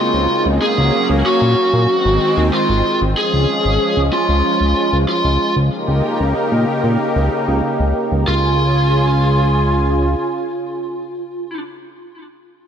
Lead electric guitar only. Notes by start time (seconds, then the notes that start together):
Already playing: F4
0.62 G#4
1.26 F#4
2.54 F4
3.17 G#4
4.13 F4
5.09 F4
8.28 F4